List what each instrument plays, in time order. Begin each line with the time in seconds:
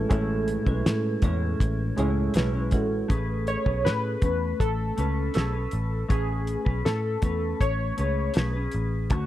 Already playing: reed electric piano G#3 A3 C#4 E4 G#4 A4
0.09 picked electric bass A1, clean electric guitar A2 G#3 C#4 E4, reed electric piano A3 C#4 E4 G#4, kalimba A4, kick, closed hi-hat
0.48 closed hi-hat
0.65 picked electric bass B1, clean electric guitar G#3 C#4 E4, kalimba B4, kick
0.86 picked electric bass A2, snare, closed hi-hat
1.22 picked electric bass E2, clean electric guitar A2 G#3 C#4 E4, kalimba C#5, kick, closed hi-hat
1.60 picked electric bass A1, kick, closed hi-hat
1.96 picked electric bass C#2, clean electric guitar A2 G#3 C#4 E4, reed electric piano G#3 C#4 E4 G#4, kalimba C#5, closed hi-hat
2.34 picked electric bass B1, clean electric guitar A2 G#3 C#4 E4, kalimba B4, snare, closed hi-hat
2.53 clean electric guitar G#3 C#4 E4
2.71 picked electric bass A1, reed electric piano G#3 C#4 E4 F#4, kalimba A4, kick, closed hi-hat
3.08 picked electric bass A1, clean electric guitar A3 C#4 G#4 B4, kick, closed hi-hat
3.47 synth keys C#5, closed hi-hat
3.65 picked electric bass B1, clean electric guitar C#4 G#4 B4, kick
3.85 picked electric bass A2, synth keys B4, snare, closed hi-hat
4.22 picked electric bass E2, clean electric guitar A3 C#4 B4, kick, closed hi-hat
4.60 picked electric bass A1, synth keys A4, kick, closed hi-hat
4.97 picked electric bass C#2, clean electric guitar A3 C#4 B4, closed hi-hat
5.34 picked electric bass B1, clean electric guitar A3 C#4 G#4 B4, synth keys A4, snare, closed hi-hat
5.52 clean electric guitar C#4 B4
5.71 picked electric bass A1, closed hi-hat
6.09 picked electric bass A1, clean electric guitar A3 C#4 G#4 B4, synth keys G#4, kick, closed hi-hat
6.47 closed hi-hat
6.65 picked electric bass B1, clean electric guitar C#4 B4, kick
6.85 picked electric bass A2, synth keys A4, snare, closed hi-hat
7.22 picked electric bass E2, clean electric guitar A3 C#4 B4, kick, closed hi-hat
7.61 picked electric bass A1, synth keys C#5, kick, closed hi-hat
7.97 picked electric bass C#2, clean electric guitar A3 C#4 G#4 B4, closed hi-hat
8.34 picked electric bass B1, clean electric guitar A3 C#4 G#4, snare, closed hi-hat
8.38 clean electric guitar B4
8.53 clean electric guitar C#4 G#4 B4
8.71 picked electric bass A1, closed hi-hat
9.10 picked electric bass D2, clean electric guitar D3 A3 C#4 F#4, kick, closed hi-hat